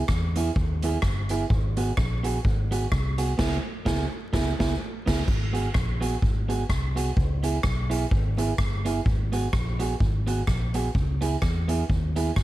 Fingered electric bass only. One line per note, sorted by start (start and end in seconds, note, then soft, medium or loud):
0.09 0.49 E2 medium
0.56 0.96 D#2 medium
1.03 1.43 G1 medium
1.50 1.90 G#1 loud
1.98 2.38 A#1 loud
2.45 2.85 G#1 medium
2.92 3.32 C2 loud
3.39 3.57 C#2 loud
3.86 4.05 C#2 loud
4.34 4.52 C#2 loud
4.60 4.74 C#2 loud
5.08 5.22 C#2 loud
5.28 5.68 G#1 loud
5.75 6.15 A#1 loud
6.23 6.63 G#1 medium
6.70 7.10 C2 medium
7.17 7.57 C#2 loud
7.64 8.04 B1 loud
8.12 8.52 G#1 medium
8.58 8.99 G1 medium
9.06 9.46 G#1 loud
9.54 9.94 A#1 medium
10.01 10.41 G#1 loud
10.48 10.88 A#1 medium
10.95 11.35 C#2 loud
11.42 11.82 E2 loud
11.90 12.30 D#2 loud
12.37 12.43 G1 medium